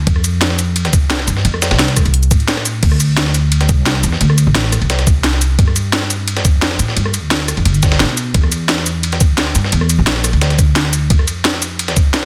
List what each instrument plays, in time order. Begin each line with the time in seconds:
0.07 upright bass F2, kick, closed hi-hat, ride
0.16 cross-stick
0.24 closed hi-hat, ride, shaker
0.41 snare, closed hi-hat, ride
0.50 snare
0.59 closed hi-hat, ride, shaker
0.76 closed hi-hat, ride
0.85 snare, closed hi-hat
0.93 upright bass C2, kick, closed hi-hat, ride, shaker
1.10 snare, closed hi-hat, ride
1.19 snare
1.27 upright bass G2, closed hi-hat, ride, shaker
1.37 snare
1.45 upright bass F2, closed hi-hat, ride
1.54 cross-stick
1.62 cross-stick, snare, closed hi-hat, ride, shaker
1.71 upright bass C2, snare, ride
1.79 snare, closed hi-hat, open hi-hat
1.88 snare, closed hi-hat
1.97 kick, cross-stick, closed hi-hat, ride, shaker
2.05 upright bass C2, closed hi-hat, ride
2.14 closed hi-hat
2.23 closed hi-hat, shaker
2.31 upright bass A2, kick, closed hi-hat, ride, shaker
2.40 closed hi-hat
2.48 snare, closed hi-hat, ride
2.57 cross-stick, snare
2.65 closed hi-hat, ride, shaker
2.83 upright bass D2, kick, closed hi-hat, crash, ride
2.92 cross-stick
3.00 closed hi-hat, ride, shaker
3.17 snare, closed hi-hat, ride
3.26 snare
3.34 closed hi-hat, ride, shaker
3.52 closed hi-hat, ride
3.61 snare, closed hi-hat
3.69 upright bass C2, kick, closed hi-hat, ride, shaker
3.86 snare, closed hi-hat, ride
3.95 snare
4.03 upright bass E2, closed hi-hat, ride, shaker
4.12 snare
4.21 upright bass D2, closed hi-hat, ride
4.30 cross-stick
4.38 closed hi-hat, ride, shaker
4.47 upright bass A1
4.55 snare, closed hi-hat, open hi-hat
4.64 snare
4.72 cross-stick, closed hi-hat, ride, shaker
4.81 upright bass C2, ride
4.90 snare, closed hi-hat, ride
4.99 snare, closed hi-hat
5.07 kick, closed hi-hat, ride, shaker
5.24 snare, closed hi-hat, ride
5.33 snare
5.41 closed hi-hat, ride, shaker
5.59 upright bass G2, kick, closed hi-hat, ride
5.68 cross-stick
5.76 closed hi-hat, ride, shaker
5.93 snare, closed hi-hat, ride
6.02 snare
6.10 closed hi-hat, ride, shaker
6.28 closed hi-hat, ride
6.37 snare, closed hi-hat
6.45 upright bass F2, kick, closed hi-hat, ride, shaker
6.62 snare, closed hi-hat, ride
6.71 snare
6.79 upright bass A2, closed hi-hat, ride, shaker
6.88 snare
6.97 upright bass G2, closed hi-hat, ride
7.05 cross-stick
7.14 closed hi-hat, ride, shaker
7.23 upright bass D2
7.31 snare, closed hi-hat, open hi-hat
7.40 snare
7.48 cross-stick, closed hi-hat, ride, shaker
7.57 upright bass F2, ride
7.65 upright bass G1, closed hi-hat, ride
7.74 closed hi-hat, shaker
7.83 kick, snare, closed hi-hat, ride, shaker
7.92 snare, ride
8.00 upright bass B2, snare, closed hi-hat, ride
8.09 ride
8.17 closed hi-hat, ride, shaker
8.34 upright bass E2, kick, closed hi-hat, ride
8.43 cross-stick
8.52 closed hi-hat, ride, shaker
8.69 snare, closed hi-hat, ride
8.78 snare
8.86 closed hi-hat, ride, shaker
9.03 closed hi-hat, ride
9.12 snare, closed hi-hat
9.20 upright bass D2, kick, closed hi-hat, ride, shaker
9.38 snare, closed hi-hat, ride
9.47 snare
9.55 upright bass G2, closed hi-hat, ride, shaker
9.64 snare
9.72 upright bass E2, closed hi-hat, ride
9.81 cross-stick
9.89 closed hi-hat, ride, shaker
9.99 upright bass A#1
10.07 snare, closed hi-hat, open hi-hat
10.16 snare
10.24 cross-stick, closed hi-hat, ride, shaker
10.33 upright bass D2, ride
10.41 snare, closed hi-hat, ride
10.50 snare, closed hi-hat
10.59 kick, closed hi-hat, ride, shaker
10.76 snare, closed hi-hat, ride
10.85 snare
10.93 closed hi-hat, ride, shaker
11.10 upright bass F2, kick, closed hi-hat, ride
11.19 cross-stick
11.28 closed hi-hat, ride, shaker
11.45 snare, closed hi-hat, ride
11.54 snare
11.62 closed hi-hat, ride, shaker
11.79 closed hi-hat, ride
11.88 snare, closed hi-hat
11.96 upright bass C2, kick, closed hi-hat, ride, shaker
12.14 snare, closed hi-hat, ride